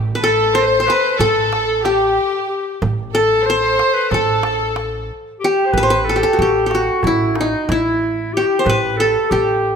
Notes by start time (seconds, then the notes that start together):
Already playing: A1 G4
0.07 darbuka ka
0.15 B4
0.22 A4
0.54 C5
0.80 C5
0.87 B4, darbuka tek
1.18 A1 A4, darbuka dum
1.36 darbuka ka
1.53 darbuka tek
1.67 A4
1.84 G4, darbuka tek
2.48 G4
2.82 A1, darbuka dum
2.99 darbuka ka
3.14 A4
3.45 C5
3.50 C5
3.79 darbuka tek
3.94 B4
4.10 A1 A4, darbuka dum
4.28 darbuka ka
4.43 darbuka tek
4.60 darbuka ka
4.76 darbuka tek
5.40 G4, darbuka ka
5.44 G4
5.66 C5
5.73 A1 B4, darbuka dum
5.78 B4
5.83 C5
5.90 B4
6.05 A4
6.09 A4
6.16 G4 A4
6.23 A4
6.33 F#4
6.38 A1 G4
6.66 G4
6.71 F#4, darbuka tek
6.75 F#4
7.03 A1 E4, darbuka dum
7.07 E4
7.35 D#4, darbuka tek
7.41 D#4
7.52 darbuka ka
7.68 A1 E4, darbuka tek
8.34 G4, darbuka ka
8.40 F#4
8.47 G4
8.59 C5
8.65 A1 B4, darbuka dum
8.70 B4
8.97 A4
9.30 A1 G4